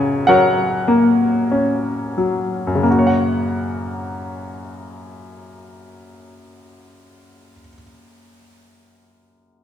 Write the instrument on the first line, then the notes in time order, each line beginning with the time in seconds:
grand piano
Already playing: F#2 C#3 F#3 F#4 A#4 C#5 F#5 G#5
0.27 F#3 A#4 C#5 F#5
0.88 A#3
1.52 C#4
2.18 F#3
2.67 F#2
2.75 C#3
2.83 A#3
2.90 F#4
2.99 C#5
3.07 F#5